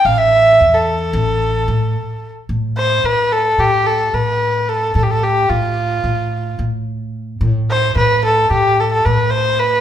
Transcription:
0.05 A1 F5
0.18 E5
0.61 E2
0.74 A4
1.13 A1
1.68 A2
2.49 A2
2.77 C5
3.03 A2 B4
3.32 A4
3.58 A2 G4
3.86 A4
4.13 A2 B4
4.68 A4
4.95 A2 A4
5.03 G4
5.10 A4
5.23 G4
5.49 A2 F4
6.04 A2
6.59 A2
7.41 A2
7.70 C5
7.96 A2 B4
8.24 A4
8.50 A2 G4
8.80 A4
8.92 A4
9.05 A2 B4
9.30 C5
9.59 B4

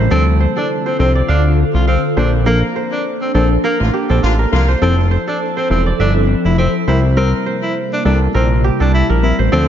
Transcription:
Already playing: G4 A#4 C5
0.11 D2 D3 F3 C4 D4 F4 A4
0.40 C5
0.57 D4 A4
0.86 C4 C5
0.99 C2 F3 C4 D4 A4
1.15 D5
1.28 D2 D4 F5
1.74 C2 F4
1.87 C4 F5
2.17 A#1 F3 A#3 D4 A4 C5
2.46 F3 A#3 D4 A4 A#4
2.76 C5
2.92 D4
3.21 C4
3.34 A#1 F3 A#3 C4 D4 A4
3.64 A#3 A#4
3.80 A1 D3 A#3 F4
3.93 G4
4.10 A#1 C4 A4
4.23 A1 D3 A#3 F4
4.39 A#4
4.52 C2 D3 F3 A#3 D4 F4 A4
4.68 C5
4.81 F1 F3 C4 E4 A4
5.11 C5
5.27 D4 A4
5.57 C4 C5
5.70 E1 F3 C4 E4 A4
5.86 D5
5.99 G1 D4 E5
6.45 F1 E4
6.58 C4 E5
6.87 C2 C3 G3 A#3 C4 E4 A#4 C5
7.17 G3 C4 E4 A#4
7.46 C5
7.63 E4
7.93 D4
8.05 C2 G3 C4 D4 E4 A4 A#4
8.34 A#1 C4 A#4
8.64 G4
8.80 C2 D4 A4
8.94 E4
9.10 A#1 A#4
9.23 G3 C4 E4 A#4
9.39 A1 C5
9.52 D2 D3 F3 A3 C4 D4 F4 A4

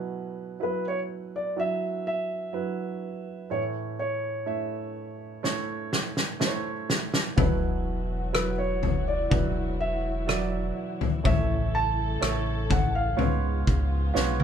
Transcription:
Already playing: B2 F#3 E4 B4
0.60 F#3 E4 B4
0.88 C#5
1.36 D5
1.56 F#3 E4 F#4 E5
2.07 E5
2.53 F#3 E4 B4
3.50 A2 E3 A3 E4 C#5
3.99 C#5
4.46 A3 E4 E5
5.43 A3 E4 C#5, snare
5.93 snare
6.17 snare
6.40 A3 E4 C5, snare
6.47 C#5
6.90 snare
7.14 snare
7.36 E1 B2 E3 F#3 E4 F#4 B4, kick, floor tom
8.33 F#3 E4 B4, cross-stick
8.58 C#5
8.83 floor tom
9.08 D5
9.30 E1 F#3 E4 B4, kick, floor tom
9.81 E5
10.27 F#3 E4 D5, cross-stick
11.01 floor tom
11.24 A1 A2 C#3 E3 A3 E4 A4 C#5 E5, kick, floor tom
11.75 A5
12.20 A1 A3 E4 C#5, cross-stick
12.70 F#5, kick, floor tom
12.95 F5
13.17 C#2 G#2 F3 G#3 B3 F4 C#5, floor tom
13.67 C#2, kick
14.14 B1 B3 F4 C#5, snare
14.40 high tom

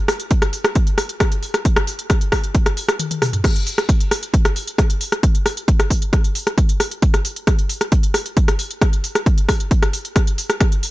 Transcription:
0.08 cross-stick, open hi-hat
0.20 closed hi-hat
0.31 kick, closed hi-hat
0.42 cross-stick, closed hi-hat
0.53 open hi-hat
0.65 cross-stick, closed hi-hat
0.75 kick, closed hi-hat
0.87 closed hi-hat
0.98 cross-stick, open hi-hat
1.09 closed hi-hat
1.20 kick, cross-stick, closed hi-hat
1.32 closed hi-hat
1.43 open hi-hat
1.54 cross-stick, closed hi-hat
1.65 kick, closed hi-hat
1.76 cross-stick, closed hi-hat
1.87 open hi-hat
1.99 closed hi-hat
2.10 kick, cross-stick, closed hi-hat
2.21 closed hi-hat
2.32 kick, cross-stick, open hi-hat
2.44 closed hi-hat
2.55 kick, closed hi-hat
2.66 cross-stick, closed hi-hat
2.77 open hi-hat
2.89 cross-stick, closed hi-hat
2.99 closed hi-hat, high tom
3.11 closed hi-hat, high tom
3.22 cross-stick, open hi-hat, mid tom
3.33 closed hi-hat, mid tom
3.44 kick, cross-stick, closed hi-hat, crash
3.56 closed hi-hat
3.67 open hi-hat
3.78 cross-stick, closed hi-hat
3.89 kick, closed hi-hat
4.00 closed hi-hat
4.11 cross-stick, open hi-hat
4.23 closed hi-hat
4.34 kick, closed hi-hat
4.45 cross-stick, closed hi-hat
4.56 open hi-hat
4.67 closed hi-hat
4.78 kick, cross-stick, closed hi-hat
4.90 closed hi-hat
5.01 open hi-hat
5.12 cross-stick, closed hi-hat
5.23 kick, closed hi-hat
5.35 closed hi-hat
5.46 cross-stick, open hi-hat
5.57 closed hi-hat
5.68 kick, closed hi-hat
5.80 cross-stick, closed hi-hat
5.90 kick, open hi-hat
6.02 closed hi-hat
6.13 kick, cross-stick, closed hi-hat
6.24 closed hi-hat
6.35 open hi-hat
6.47 cross-stick, closed hi-hat
6.58 kick, closed hi-hat
6.69 closed hi-hat
6.80 cross-stick, open hi-hat
6.91 closed hi-hat
7.02 kick, closed hi-hat
7.14 cross-stick, closed hi-hat
7.25 open hi-hat
7.36 closed hi-hat
7.47 kick, cross-stick, closed hi-hat
7.59 closed hi-hat
7.69 open hi-hat
7.81 cross-stick, closed hi-hat
7.92 kick, closed hi-hat
8.03 closed hi-hat
8.14 cross-stick, open hi-hat
8.26 closed hi-hat
8.37 kick, closed hi-hat
8.48 cross-stick, closed hi-hat
8.59 open hi-hat
8.71 closed hi-hat
8.81 kick, cross-stick, closed hi-hat
8.93 closed hi-hat
9.04 open hi-hat
9.15 cross-stick, closed hi-hat
9.26 kick, closed hi-hat
9.38 closed hi-hat
9.49 kick, cross-stick, open hi-hat
9.60 closed hi-hat
9.71 kick, closed hi-hat
9.83 cross-stick, closed hi-hat
9.93 open hi-hat
10.05 closed hi-hat
10.16 kick, cross-stick, closed hi-hat
10.27 closed hi-hat
10.38 open hi-hat
10.50 cross-stick, closed hi-hat
10.61 kick, cross-stick, closed hi-hat
10.72 closed hi-hat
10.83 open hi-hat

